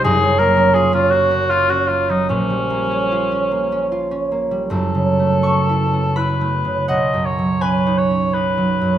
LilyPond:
<<
  \new Staff \with { instrumentName = "Cor anglais" } { \time 3/4 \key bes \minor \tempo 4 = 82 aes'8 bes'8 aes'16 f'16 ges'8 f'16 ges'16 f'16 ees'16 | des'2 r4 | \key fis \dorian a'2 b'4 | dis''8 cis''8 b'8 cis''8 b'4 | }
  \new Staff \with { instrumentName = "Harp" } { \time 3/4 \key bes \minor r2. | r2. | \key fis \dorian r4 cis'''4 b''4 | fis''4 gis''2 | }
  \new Staff \with { instrumentName = "Harp" } { \time 3/4 \key bes \minor <ges,, ges, bes f'>16 ges16 bes16 des'16 f'16 des'16 bes16 des'16 f'16 des'16 bes16 ges16 | <bes,, bes,>16 g16 bes16 des'16 f'16 des'16 bes16 des'16 f'16 des'16 bes16 g16 | \key fis \dorian \tuplet 3/2 { <fis,, fis,>8 cis8 a8 b8 e'8 b8 e'8 a8 cis8 } | \tuplet 3/2 { b,,8 fis,8 fis8 cis'8 dis'8 cis'8 dis'8 fis8 fis,8 } | }
>>